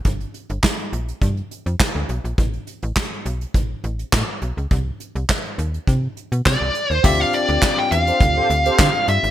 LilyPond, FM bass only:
\new Staff \with { instrumentName = "FM bass" } { \clef bass \time 4/4 \key d \mixolydian \tempo 4 = 103 g,,8 r16 g,,16 r8 bes,,8 g,8 r16 f,16 r16 d,16 b,,16 bes,,16 | a,,8 r16 a,,16 r8 b,,8 a,,8 a,,8 a,16 r16 b,,16 cis,16 | c,8 r16 c,16 r8 ees,8 c8 r16 b,16 c16 c,16 r16 ees,16 | d,8 r16 d,16 r8 e,8 d,8 d,8 d16 r16 g,16 gis,,16 | }